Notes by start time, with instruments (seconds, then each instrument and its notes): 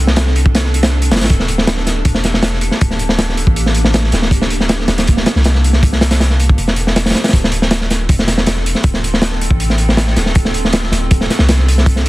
Already playing: 808-style bass C2, ambient pad C4 D4 F4 A4
0.07 snare
0.16 snare, closed hi-hat
0.27 snare
0.36 closed hi-hat
0.46 kick
0.55 snare, closed hi-hat
0.64 snare
0.74 closed hi-hat
0.83 snare, closed hi-hat
0.92 snare
1.02 closed hi-hat
1.11 808-style bass F1, snare, closed hi-hat
1.16 snare, closed hi-hat
1.21 808-style bass A1, snare, closed hi-hat
1.24 snare, closed hi-hat
1.30 808-style bass D1, ambient pad A#3 G4, kick, closed hi-hat
1.40 snare
1.48 closed hi-hat
1.58 snare
1.67 snare, closed hi-hat
1.77 snare
1.87 snare, closed hi-hat
2.05 808-style bass E1, kick, closed hi-hat
2.15 snare
2.24 snare, closed hi-hat
2.34 snare
2.43 snare, closed hi-hat
2.53 snare
2.61 closed hi-hat
2.71 snare
2.81 808-style bass D1, kick, closed hi-hat
2.91 snare
2.99 closed hi-hat
3.09 snare
3.18 snare, closed hi-hat
3.29 snare
3.37 closed hi-hat
3.47 808-style bass A1, kick
3.56 closed hi-hat
3.66 snare
3.75 closed hi-hat
3.85 snare
3.94 snare, closed hi-hat
4.04 snare
4.12 808-style bass D1, snare, closed hi-hat
4.22 snare
4.31 kick, closed hi-hat
4.42 snare
4.50 closed hi-hat
4.60 snare
4.69 snare, closed hi-hat
4.79 snare
4.88 808-style bass D1, snare, closed hi-hat
4.98 snare, closed hi-hat
5.07 kick, closed hi-hat
5.17 snare
5.26 snare, closed hi-hat
5.36 808-style bass C2, snare
5.44 snare, closed hi-hat
5.55 snare
5.64 closed hi-hat
5.73 snare
5.83 kick, closed hi-hat
5.93 snare
6.01 snare, closed hi-hat
6.11 snare, closed hi-hat
6.20 snare, closed hi-hat
6.30 snare
6.40 closed hi-hat
6.49 kick
6.58 808-style bass E1, closed hi-hat
6.68 snare
6.76 closed hi-hat
6.87 snare
6.96 snare, closed hi-hat
7.06 snare, closed hi-hat
7.10 snare, closed hi-hat
7.15 snare, closed hi-hat
7.24 snare, closed hi-hat
7.28 snare, closed hi-hat
7.33 808-style bass D1, ambient pad C4 D4 F4 A4, kick, closed hi-hat
7.44 snare
7.52 closed hi-hat
7.62 snare
7.71 snare, closed hi-hat
7.81 snare
7.91 snare, closed hi-hat
8.09 808-style bass E1, kick, closed hi-hat
8.19 snare
8.27 snare, closed hi-hat
8.38 snare
8.46 snare, closed hi-hat
8.57 snare
8.66 closed hi-hat
8.75 snare
8.84 808-style bass D1, kick, closed hi-hat
8.94 snare
9.04 closed hi-hat
9.14 snare
9.22 snare, closed hi-hat
9.32 snare
9.41 closed hi-hat
9.51 808-style bass A1, kick
9.60 closed hi-hat
9.70 snare
9.78 closed hi-hat
9.89 snare
9.97 snare, closed hi-hat
10.07 snare
10.16 808-style bass D1, snare, closed hi-hat
10.26 snare
10.35 kick, closed hi-hat
10.45 snare
10.54 closed hi-hat
10.65 snare
10.73 snare, closed hi-hat
10.83 snare
10.92 808-style bass D1, snare, closed hi-hat
11.11 kick, closed hi-hat
11.21 snare
11.30 snare, closed hi-hat
11.39 808-style bass C2, snare
11.49 snare, closed hi-hat
11.59 snare
11.68 closed hi-hat
11.78 snare
11.86 kick, closed hi-hat
11.96 snare
12.06 closed hi-hat